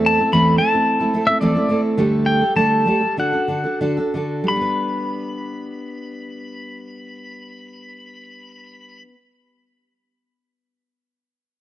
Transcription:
Already playing: steel-string acoustic guitar E2 E3 A3 C4 E4 A4
0.06 pedal steel guitar A5
0.19 steel-string acoustic guitar A3 C4 E4 A4
0.32 steel-string acoustic guitar E2 E3 A3 C4 E4 A4, pedal steel guitar B5
0.58 steel-string acoustic guitar A3 C4 E4 A4, pedal steel guitar A5
0.73 steel-string acoustic guitar A3 C4 E4 A4
1.00 steel-string acoustic guitar A3 C4 E4 A4
1.14 steel-string acoustic guitar A3 C4 E4 A4
1.27 steel-string acoustic guitar A3 C4 E4, pedal steel guitar E5
1.41 steel-string acoustic guitar E2 E3 A3 C4 E4 A4, pedal steel guitar D5
1.55 steel-string acoustic guitar A3 C4 E4 A4
1.69 steel-string acoustic guitar A3 C4 E4 A4
1.98 steel-string acoustic guitar D3 G3 A3 G4 A4
2.26 pedal steel guitar G5
2.41 steel-string acoustic guitar G3 G4 A4
2.56 steel-string acoustic guitar D3 G3 A3 G4 A4, pedal steel guitar A5
2.86 steel-string acoustic guitar G3 A3 G4 A4
3.01 steel-string acoustic guitar G3 A4
3.17 steel-string acoustic guitar D3 D4 F#4 A4, pedal steel guitar F#5
3.32 steel-string acoustic guitar D4 F#4 A4
3.48 steel-string acoustic guitar D3 D4 F#4 A4
3.64 steel-string acoustic guitar D4 F#4 A4
3.81 steel-string acoustic guitar D3 D4 F#4 A4
3.97 steel-string acoustic guitar D4 F#4 A4
4.14 steel-string acoustic guitar D3 D4 F#4 A4
4.44 steel-string acoustic guitar G3
4.48 steel-string acoustic guitar D4, pedal steel guitar B5
4.56 steel-string acoustic guitar B3
4.61 steel-string acoustic guitar B4

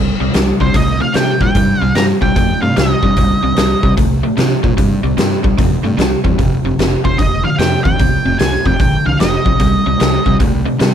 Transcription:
Already playing: fingered electric bass C2, overdriven electric guitar C3 G3
0.20 fingered electric bass C2, overdriven electric guitar C3 G3
0.34 fingered electric bass C2, overdriven electric guitar C3 G3, snare, open hi-hat
0.60 fingered electric bass C2, overdriven electric guitar C3 G3, lead electric guitar C5, kick
0.74 fingered electric bass C2, overdriven electric guitar C3 A3, lead electric guitar D#5, kick, open hi-hat
1.00 overdriven electric guitar C3 A3, lead electric guitar F5
1.14 overdriven electric guitar C3 G3, fingered electric bass C3, lead electric guitar G5, snare, open hi-hat
1.40 fingered electric bass A#2, overdriven electric guitar C3 G3, lead electric guitar G5, kick
1.55 fingered electric bass G2, overdriven electric guitar C3 G3, kick, open hi-hat
1.81 fingered electric bass C2, overdriven electric guitar C3 G3, lead electric guitar F5
1.95 fingered electric bass G2, overdriven electric guitar C3 G3, lead electric guitar A#5, snare, open hi-hat
2.21 fingered electric bass C2, overdriven electric guitar C3 G3, lead electric guitar G5, kick
2.36 fingered electric bass F2, overdriven electric guitar C3 A3, lead electric guitar G5, kick, open hi-hat
2.62 fingered electric bass G2, overdriven electric guitar C3 A3, lead electric guitar F5
2.76 fingered electric bass C2, overdriven electric guitar C3 G3, lead electric guitar D#5, snare, open hi-hat
3.03 fingered electric bass G2, overdriven electric guitar C3 G3, kick
3.17 fingered electric bass C2, overdriven electric guitar C3 G3, kick, open hi-hat
3.43 fingered electric bass C2, overdriven electric guitar C3 G3
3.57 fingered electric bass C2, overdriven electric guitar C3 G3, snare, open hi-hat
3.83 fingered electric bass C2, overdriven electric guitar C3 G3, kick
3.97 fingered electric bass C2, overdriven electric guitar C3 A3, kick, open hi-hat
4.23 overdriven electric guitar C3 A3
4.37 overdriven electric guitar C3 G3, fingered electric bass C3, snare, open hi-hat
4.63 fingered electric bass A#2, overdriven electric guitar C3 G3, kick
4.77 fingered electric bass G2, overdriven electric guitar C3 G3, kick, open hi-hat
5.03 fingered electric bass C2, overdriven electric guitar C3 G3
5.17 fingered electric bass G2, overdriven electric guitar C3 G3, snare, open hi-hat
5.44 fingered electric bass C2, overdriven electric guitar C3 G3, kick
5.58 fingered electric bass F2, overdriven electric guitar C3 A3, kick, open hi-hat
5.83 fingered electric bass G2, overdriven electric guitar C3 A3
5.98 fingered electric bass C2, overdriven electric guitar C3 G3, snare, open hi-hat
6.24 fingered electric bass E2, overdriven electric guitar C3 G3, kick
6.38 fingered electric bass F1, overdriven electric guitar F2 C3, kick, open hi-hat
6.64 fingered electric bass F1, overdriven electric guitar F2 C3
6.78 fingered electric bass F1, overdriven electric guitar F2 C3, snare, open hi-hat
7.05 fingered electric bass F1, overdriven electric guitar F2 C3, lead electric guitar C5, kick
7.18 fingered electric bass F1, overdriven electric guitar F2 D3, lead electric guitar D#5, kick, open hi-hat
7.44 overdriven electric guitar F2 D3, lead electric guitar F5
7.58 fingered electric bass F2, overdriven electric guitar F2 C3, lead electric guitar G5, snare, open hi-hat
7.84 fingered electric bass D#2, overdriven electric guitar F2 C3, lead electric guitar G5, kick
7.99 fingered electric bass C2, overdriven electric guitar F2 C3, kick, open hi-hat
8.25 fingered electric bass F1, overdriven electric guitar F2 C3
8.39 fingered electric bass C2, overdriven electric guitar F2 C3, lead electric guitar G#5, snare, open hi-hat
8.66 fingered electric bass F1, overdriven electric guitar F2 C3, lead electric guitar G5, kick
8.80 fingered electric bass A#1, overdriven electric guitar F2 D3, lead electric guitar G5, kick, open hi-hat
9.06 fingered electric bass C2, overdriven electric guitar F2 D3, lead electric guitar F5
9.20 fingered electric bass F1, overdriven electric guitar F2 C3, lead electric guitar D#5, snare, open hi-hat
9.45 fingered electric bass B1, overdriven electric guitar F2 C3, kick
9.60 fingered electric bass C2, overdriven electric guitar C3 G3, kick, open hi-hat
9.86 fingered electric bass C2, overdriven electric guitar C3 G3
10.00 fingered electric bass C2, overdriven electric guitar C3 G3, snare, open hi-hat
10.26 fingered electric bass C2, overdriven electric guitar C3 G3, kick
10.40 fingered electric bass C2, overdriven electric guitar C3 A3, kick, open hi-hat
10.66 overdriven electric guitar C3 A3
10.79 overdriven electric guitar C3 G3, fingered electric bass C3, snare, open hi-hat

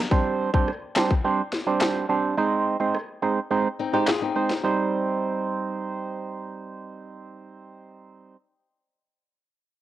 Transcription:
0.11 synth stab G3 C4 D4 C5, kick
0.54 synth stab G3 C4 D4 C5, kick
0.68 cross-stick
0.96 synth stab G3 C4 D4 C5, snare, clap
1.11 kick
1.24 synth stab G3 C4 D4 C5
1.53 snare
1.67 synth stab G3 C4 D4 C5
1.81 snare, clap
2.09 synth stab G3 C4 D4 C5
2.37 synth stab G#3 C4 D#4 C5
2.80 synth stab G#3 C4 D#4 C5
2.94 cross-stick
3.22 synth stab G#3 C4 D#4 C5
3.51 synth stab G#3 C4 D#4 C5
3.79 nylon-string guitar C4 D#4
3.93 synth stab G#3 C4 D#4 C5, nylon-string guitar D#4 G4
4.07 nylon-string guitar F4 G#4, snare, clap
4.22 nylon-string guitar C4 D#4
4.36 synth stab G#3 C4 D#4 C5
4.50 snare
4.64 synth stab G3 C4 D#4 C5

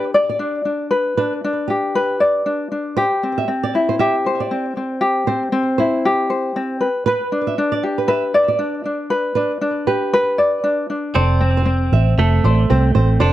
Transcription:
Already playing: ukulele D4 G4 B4
0.14 ukulele D5
0.29 nylon-string guitar D5
0.39 ukulele D4
0.65 ukulele D4
0.91 ukulele B4
1.17 ukulele D4, nylon-string guitar B4
1.44 ukulele D4
1.68 nylon-string guitar G4, ukulele G4
1.95 ukulele B4
2.20 ukulele D5
2.46 ukulele D4
2.72 ukulele D4
2.97 ukulele G4, nylon-string guitar C5
3.23 ukulele C4
3.38 nylon-string guitar E5
3.48 ukulele C4
3.63 nylon-string guitar D5
3.75 ukulele E4
3.89 nylon-string guitar C5
3.99 ukulele G4, nylon-string guitar E5
4.26 ukulele C5
4.40 nylon-string guitar D5
4.51 ukulele C4
4.77 ukulele C4
5.01 ukulele G4
5.27 ukulele C4, nylon-string guitar C5
5.52 ukulele C4
5.78 ukulele E4, nylon-string guitar C5
6.05 ukulele G4
6.30 ukulele C5
6.56 ukulele C4
6.81 ukulele B4
7.06 nylon-string guitar B4, ukulele B4
7.32 ukulele D4
7.47 nylon-string guitar E5
7.58 ukulele D4
7.72 nylon-string guitar D5
7.83 ukulele G4
7.98 nylon-string guitar B4
8.08 ukulele B4, nylon-string guitar E5
8.34 ukulele D5
8.48 nylon-string guitar D5
8.59 ukulele D4
8.86 ukulele D4
9.10 ukulele B4
9.35 ukulele D4, nylon-string guitar B4
9.61 ukulele D4
9.87 ukulele G4, nylon-string guitar B4
10.13 ukulele B4
10.38 ukulele D5
10.64 ukulele D4
10.90 ukulele D4
11.14 fingered electric bass F1, clean electric guitar C4, ukulele A4 C5, nylon-string guitar D5
11.41 ukulele C4
11.57 nylon-string guitar C5
11.66 ukulele C4
11.92 fingered electric bass A1, nylon-string guitar E5
12.18 fingered electric bass F1, clean electric guitar A3, ukulele A4
12.44 fingered electric bass A1, ukulele C5, nylon-string guitar D5
12.70 fingered electric bass C2, ukulele C4, nylon-string guitar C5
12.95 fingered electric bass A1, ukulele C4, nylon-string guitar C5
13.20 fingered electric bass F1, clean electric guitar D4, ukulele A4 C5, nylon-string guitar D5

